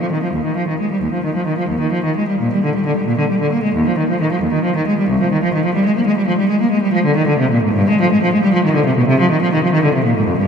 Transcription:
cello
0.01 F3
0.12 D#3
0.23 F3
0.33 D#2
0.45 D#3
0.57 F3
0.68 D#3
0.80 G#3
0.91 G3
1.02 D#2
1.13 F3
1.24 D#3
1.35 F3
1.46 D#3
1.58 F3
1.69 D#2
1.80 D#3
1.92 F3
2.04 D#3
2.16 G#3
2.28 G3
2.40 A#2
2.53 G3
2.64 D3
2.75 G3
2.86 D3
2.97 G3
3.07 A#2
3.18 D3
3.29 G3
3.41 D3
3.52 A#3
3.63 G#3
3.75 D#2
3.87 F3
3.98 D#3
4.10 F3
4.21 D#3
4.32 F3
4.42 D#2
4.53 D#3
4.64 F3
4.76 D#3
4.87 G#3
4.99 G3
5.09 C2
5.21 F3
5.32 D#3
5.43 F3
5.54 D#3
5.65 F3
5.74 G3
5.86 G#3
5.96 A#3
6.07 G#3
6.17 G3
6.27 F3
6.38 G3
6.49 G#3
6.61 A#3
6.71 G#3
6.82 G3
6.93 F3
7.05 D3
7.16 D#3
7.27 D3
7.39 C3
7.51 A#2
7.64 G#2
7.75 G2
7.89 G#3
8.01 F3
8.12 G#3
8.23 F3
8.33 G#3
8.43 G3
8.53 F3
8.64 D#3
8.75 D3
8.86 C3
8.97 B2
9.08 C3
9.20 F3
9.31 D#3
9.42 F3
9.53 D#3
9.64 F3
9.73 D#3
9.83 D3
9.94 C3
10.05 A#2
10.17 G#2
10.27 F2
10.38 G2

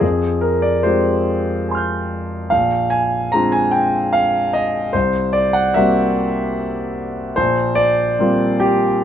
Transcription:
grand piano
0.00 F2 G#4
0.41 A#4
0.62 D5
0.83 G#3 C4 F4 G4 C5
1.69 G#5 C6
1.75 F6 G6
2.50 A#1 F5
2.90 G#5
3.32 G#3 C4 D4 F4 A#5
3.52 G#5
3.71 G5
4.13 F5
4.53 D#5
4.93 C2 C5
5.33 D5
5.53 F#5
5.74 G3 A#3 C4 F#4 E5
7.36 A#1 C5
7.75 D5
8.19 G3 A#3 C4 F4
8.60 G4

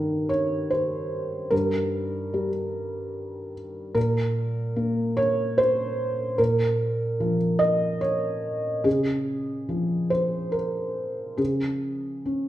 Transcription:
felt piano
Already playing: G2 D#3 A#4
0.29 C#5
0.70 C5
1.51 G2 A#4
2.34 G3
3.94 A#2 A#4
4.76 A#3
5.17 C#5
5.58 C5
6.38 A#2 A#4
7.20 F3
7.59 D#5
8.01 C#5
8.84 C#3 G#4
9.69 F3
10.10 C5
10.52 A#4
11.37 C#3 G#4
12.26 C#4

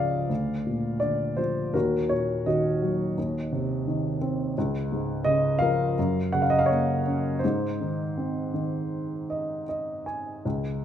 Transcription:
upright piano
Already playing: C#2 G#2 C#3 F3 D5 D#5 F5
0.29 D2
0.67 A#2
1.00 D3 D5
1.37 F3 C5
1.74 D#2 F#4 A#4
2.09 A#2 C#5
2.46 D#3 F#4 D#5
2.82 F#3
3.18 D#2
3.52 C3
3.88 D#3
4.21 C4
4.58 C#2
4.92 G#2
5.24 C#3 D#5
5.59 F3 A#4 F5
5.99 F#2
6.33 C#3 F#5
6.42 F5
6.50 D#5
6.59 F5
6.66 C#5
6.70 A#3
7.07 C#4
7.39 C5
7.43 G#2 D#4
7.81 D#3
8.17 C4
8.54 D#3
9.30 D#5
9.69 D#5
10.06 G#5
10.45 C#2

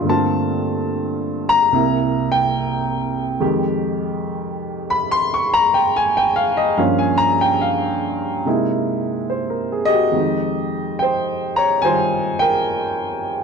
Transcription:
grand piano
0.01 G2 D3 A3
0.07 A#3 C4 A5
0.11 F4
1.49 A#5
1.72 C2 C3 A#3 E4
2.32 G5
3.40 F2 D#3 G#3 G4
4.90 B5
5.11 C6
5.34 C#6
5.54 A#5
5.74 G5
5.96 G#5
6.17 G5
6.36 F5
6.57 D#5
6.77 G2 F3 A#3 C#4 F5
6.99 G#5
7.18 A#5
7.41 G5
7.61 F5
8.45 C3 G#3 A#3 D#4 E4
9.30 C5
9.50 A#4
9.72 G#4
9.85 G4 D#5
9.92 F#4
10.12 F2 D#3 G#3
10.17 D#4
10.99 C5 G5
11.56 C#5 A#5
11.82 D#3 G3 F4 C5 G#5
12.39 A#4 G5

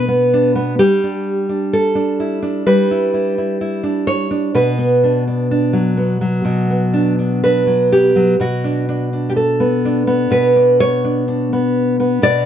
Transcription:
nylon-string guitar
Already playing: B2 D4 F#4 B4
0.08 B3
0.34 D4
0.55 B3
0.79 G3 G4
1.04 D4
1.49 D4
1.73 A4
1.95 D4
2.20 E4
2.42 D4
2.67 G3 B4
2.91 E4
3.14 E4
3.38 E4
3.61 E4
3.83 D4
4.07 C#5
4.31 D4
4.55 B2 B4
4.78 B3
5.03 D4
5.28 D4
5.51 D4
5.73 F#3
5.97 B3
6.21 F#3
6.45 B2
6.70 B3
6.93 D4
7.19 D4
7.44 D4 B4
7.67 F#3
7.92 B3 G4
8.16 F#3
8.40 B2 F#4
8.64 D4
8.89 D4
9.13 D4
9.30 G4
9.36 A4
9.60 B3
9.85 D4
10.07 B3
10.31 B2 B4
10.56 D4
10.80 C#5
11.04 D4
11.28 D4
11.53 B3
12.00 B3
12.22 B2 D5

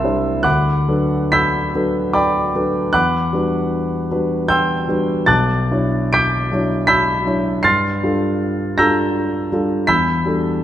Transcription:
grand piano
Already playing: C2 E5 A5 C6 E6
0.04 G3 D4 E4 C5
0.43 D2 F#5 B5 D6 F#6
0.88 F#3 D4 A4 B4
1.32 B5 E6 G6 B6
1.75 F#3 D4 A4 B4
2.13 D5 G5 B5 D6
2.55 F#3 D4 A4 B4
2.93 E2 F#5 B5 D6 F#6
3.33 G3 D4 F#4 B4
4.11 G3 D4 F#4 B4
4.48 G5 C6 E6 G6
4.88 G3 D4 F#4 B4
5.26 B1 A5 D6 F#6 A6
5.71 F#3 D4 E4 C#5
6.13 D6 G6 B6 D7
6.52 F#3 D4 E4 C#5
6.87 B5 E6 G6 B6
7.26 F#3 D4 E4 C#5
7.63 G2 C6 F6 A6 C7
8.03 G3 D4 F4 A4
8.78 G3 D4 F4 A4 A#5 E6 G6 A#6
9.52 G3 D4 F4 A4
9.87 E2 B5 E6 G6 B6
10.26 G3 D4 F#4 A4

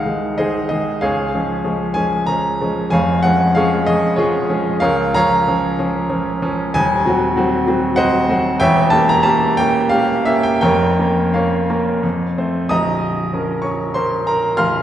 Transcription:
grand piano
Already playing: C2 D#3 G#3 D#4 C5 D#5 F5 F#5
0.06 D#3 G#3 D#4
0.38 D#3 G#3 D#4 G#4 C5 D#5
0.69 D#3 G#3 D#4 D#5
1.01 C#2 G#4 C#5 F5
1.35 F3 G#3 C#4
1.64 F3 G#3 C#4
1.94 F3 G#3 C#4 G#5
2.26 F3 G#3 C#4 A#5
2.61 F3 G#3 C#4
2.90 F1 F2 C#5 F5 G#5
3.23 F3 G#3 C#4 F#5
3.55 F3 G#3 C#4 G#4 C#5 F5
3.86 F3 G#3 C#4 D#5
4.16 F3 G#3 C#4 F4 G#4 C#5
4.50 F3 G#3 C#4
4.80 C#2 A#4 C#5 F5
5.14 F3 C#4 C#5 F5 A#5
5.48 F3 C#4
5.79 F3 C#4
6.10 F3 C#4
6.42 F3 C#4
6.74 D#1 D#2 G#5
7.06 F#3 C4 F#4
7.36 F#3 C4 F#4
7.67 F#3 C4 F#4
7.96 F#3 C4 F#4 C5 D#5 F#5
8.29 F#3 C4 F#4
8.60 E1 E2 C#5 E5 G5
8.90 A#3 C#4 G4 A5
9.09 A#5
9.23 A#3 C#4 G4 A5
9.57 A#3 C#4 G4 G5
9.89 A#3 C#4 G4 F5
10.25 A#3 C#4 G4 E5
10.43 G5
10.61 F1 F2 A#4 C#5 G5
10.99 A#3 C#4 A#4
11.34 A#3 C#4 A#4 C#5 F5
11.70 A#3 C#4 A#4
12.03 F2
12.38 A3 C4 C5
12.69 A#0 A#1 D#5 A#5 D#6
13.33 F3 C#4 A#4
13.62 C#5 C#6
13.94 F3 C#4 A#4 C5 C6
14.27 A#4 A#5
14.57 A#0 A#1 F5 C6 F6

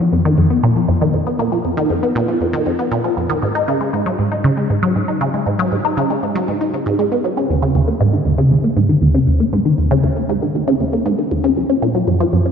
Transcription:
synth arpeggio sound
0.12 F2
0.25 D#3
0.38 F2
0.50 B3
0.63 A#2
0.76 F3
0.88 F2
1.01 D#3
1.14 F2
1.27 B3
1.39 A#2
1.52 F3
1.65 F2
1.77 D#3
1.90 F2
2.03 B3
2.15 A#2
2.28 F3
2.41 F2
2.53 D#3
2.66 F2
2.79 B3
2.91 A#2
3.04 F3
3.17 F2
3.30 D#3
3.42 G#2
3.55 D#4
3.68 C#3
3.81 G#3
3.93 G#2
4.06 F#3
4.19 G#2
4.32 D#4
4.44 C#3
4.57 G#3
4.70 G#2
4.83 F#3
4.96 G#2
5.08 D#4
5.21 C#3
5.34 G#3
5.46 G#2
5.59 F#3
5.72 G#2
5.85 D#4
5.97 C#3
6.10 G#3
6.23 G#2
6.35 F#3
6.48 G#2
6.61 D#4
6.74 C#3
6.86 G#2
6.99 G#3
7.12 B3
7.24 F#3
7.37 C#3
7.50 D#2
7.62 C#3
7.75 D#2
7.88 A#3
8.01 G#2
8.13 D#3
8.26 D#2
8.38 C#3
8.51 D#2
8.64 A#3
8.77 G#2
8.89 D#3
9.02 D#2
9.15 C#3
9.27 D#2
9.40 A#3
9.53 G#2
9.65 D#3
9.78 D#2
9.91 C#3
10.04 D#2
10.17 A#3
10.29 G#2
10.42 D#3
10.55 D#2
10.68 C#3
10.80 D#2
10.93 A#3
11.06 G#2
11.18 D#3
11.32 D#2
11.44 C#3
11.57 F#2
11.70 C#4
11.82 A#2
11.95 F#3
12.08 F#2
12.20 F3
12.33 F#2
12.46 C#4

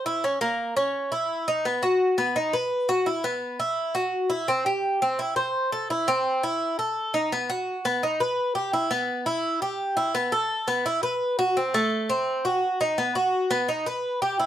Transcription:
cuban tres
0.06 E4
0.24 C#4
0.41 A#3
0.77 C#4
1.12 E4
1.48 D#4
1.65 B3
1.83 F#4
2.18 B3
2.36 D#4
2.53 B4
2.89 F#4
3.06 E4
3.24 B3
3.60 E4
3.95 F#4
4.30 E4
4.48 C4
4.66 G4
5.02 C4
5.19 E4
5.36 C5
5.72 A4
5.90 E4
6.08 C4
6.43 E4
6.79 A4
7.14 D#4
7.32 B3
7.50 F#4
7.85 B3
8.03 D#4
8.20 B4
8.55 G4
8.73 E4
8.91 B3
9.26 E4
9.62 G4
9.97 E4
10.15 B3
10.32 A4
10.68 B3
10.86 E4
11.03 B4
11.39 F#4
11.57 C4
11.74 A3
12.10 C4
12.45 F#4
12.81 D#4
12.98 B3
13.15 F#4
13.51 B3
13.69 D#4
13.86 B4
14.22 G4
14.39 E4

